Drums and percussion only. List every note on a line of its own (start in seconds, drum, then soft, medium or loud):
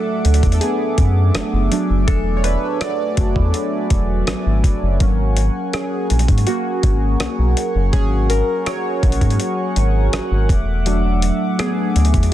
0.25 closed hi-hat medium
0.34 closed hi-hat medium
0.43 kick medium
0.43 closed hi-hat medium
0.52 closed hi-hat medium
0.61 closed hi-hat medium
0.98 kick medium
0.98 closed hi-hat medium
1.35 cross-stick loud
1.35 closed hi-hat medium
1.72 closed hi-hat medium
2.08 kick loud
2.08 closed hi-hat medium
2.44 closed hi-hat medium
2.81 cross-stick loud
2.81 closed hi-hat medium
3.17 kick medium
3.17 closed hi-hat medium
3.36 kick medium
3.54 closed hi-hat medium
3.90 kick medium
3.90 closed hi-hat medium
4.27 cross-stick loud
4.27 closed hi-hat medium
4.64 kick medium
4.64 closed hi-hat medium
5.00 kick loud
5.00 closed hi-hat medium
5.37 closed hi-hat medium
5.73 cross-stick loud
5.73 closed hi-hat medium
6.10 closed hi-hat medium
6.19 closed hi-hat medium
6.28 kick medium
6.28 closed hi-hat medium
6.38 closed hi-hat medium
6.47 closed hi-hat medium
6.83 kick medium
6.83 closed hi-hat medium
7.20 cross-stick loud
7.20 closed hi-hat medium
7.57 closed hi-hat medium
7.93 kick loud
7.93 closed hi-hat medium
8.30 closed hi-hat medium
8.66 cross-stick loud
8.66 closed hi-hat medium
9.03 kick medium
9.03 closed hi-hat medium
9.12 closed hi-hat medium
9.21 kick medium
9.21 closed hi-hat medium
9.30 closed hi-hat medium
9.40 closed hi-hat medium
9.76 closed hi-hat medium
10.13 cross-stick loud
10.13 closed hi-hat medium
10.49 kick loud
10.49 closed hi-hat medium
10.86 closed hi-hat medium
11.22 closed hi-hat medium
11.59 cross-stick loud
11.59 closed hi-hat medium
11.96 closed hi-hat medium
12.05 closed hi-hat medium
12.14 kick medium
12.14 closed hi-hat medium
12.23 closed hi-hat medium